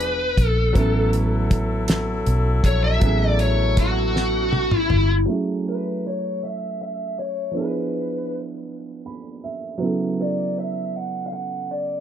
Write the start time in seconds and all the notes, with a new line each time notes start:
Already playing: E1 F3 B3 D4 E4 G#4 B4
0.00 closed hi-hat
0.38 A#1, kick, closed hi-hat
0.47 A4
0.73 A1 F#3 B3 C#4 E4 A4, kick, closed hi-hat
0.77 E4 A4
1.13 closed hi-hat
1.51 kick, closed hi-hat
1.88 snare, closed hi-hat
2.26 B1, closed hi-hat
2.64 A#1 C#5, kick, closed hi-hat
2.84 E5
2.99 A1 F#3 B3 C#4, kick, closed hi-hat
3.04 E4 G#4
3.29 D5
3.39 C#5, closed hi-hat
3.77 F#4, kick, closed hi-hat
4.16 snare
4.53 high tom
4.71 mid tom
4.77 E4
4.90 G1, mid tom
5.25 F#3 A3 C#4
5.30 E4 G#4
5.69 B4
6.07 C#5
6.44 E5
6.82 E5
7.19 C#5
7.51 F3 B3 D4
7.56 E4 G#4 B4
9.06 B5
9.44 E5
9.78 C#3 F#3 B3
9.83 E4 A4
10.22 D5
10.59 E5
10.96 F#5
11.26 F5
11.33 F#5
11.71 D5